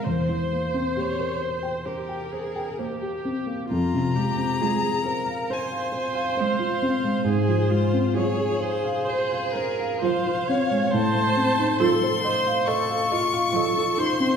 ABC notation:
X:1
M:4/4
L:1/16
Q:1/4=67
K:Fm
V:1 name="Violin"
c4 d2 c2 B6 z2 | b8 a4 f4 | c4 d2 c2 A4 f4 | [K:Fphr] =a4 c'4 d'6 c'2 |]
V:2 name="Viola"
c8 G2 A2 G4 | F2 G2 A2 B2 c8 | A2 F2 A4 c2 B2 c2 d2 | [K:Fphr] c4 =A2 c2 A2 F2 A2 c2 |]
V:3 name="Grand piano"
=E,, =E, B, C G B c g c g c g c G C B, | F,, C, A, C F A c f c f c f c F C A, | A,, F, A, C F A c f c f c f c F C A, | [K:Fphr] =A,, =A, C E F c e f e f e f e F E C |]
V:4 name="Cello" clef=bass
z4 B,4 z4 B,4 | z4 A,4 z4 A,4 | z4 F,4 z4 F,4 | [K:Fphr] z4 F,4 z4 F,4 |]